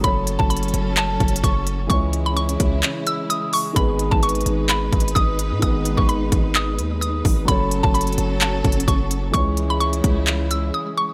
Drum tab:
HH |x-----------x-----------x--x--x--x--x-----------x-----------x---x---x---x-----------x-----------|x-----------x-----------x-----x-----x-----------x-----------x-----------x-----------o-----------|x-----------x-----------x--x--x--x--x-----------x-----------x---x---x---x-----------x-----------|x-----------x-----------x-----------x-----------x-----------x-----------x-----------o-----------|
CP |------------------------------------------------x-----------------------------------------------|------------------------------------------------x-----------------------------------------------|------------------------------------------------x-----------------------------------------------|------------------------------------------------x-----------------------------------------------|
BD |o-----------------o-----------------------------------------o-----------o-----------------------|o-----------------------------------o-----------------------------------------------------------|o-----------------o-----------------------------------------o-----------o-----------------------|o-----------------o-----------------o-----------------------------------------------o-----------|

HH |x-----------x-----------x--x--x--x--x-----------x-----------x---x---x---x-----------x-----------|x-----------x-----------x-----x-----x-----------x-----------x-----------------------------------|
CP |------------------------------------------------x-----------------------------------------------|------------------------------------------------x-----------------------------------------------|
BD |o-----------------o-----------------------------------------o-----------o-----------------------|o-----------------------------------o-----------------------------------------------------------|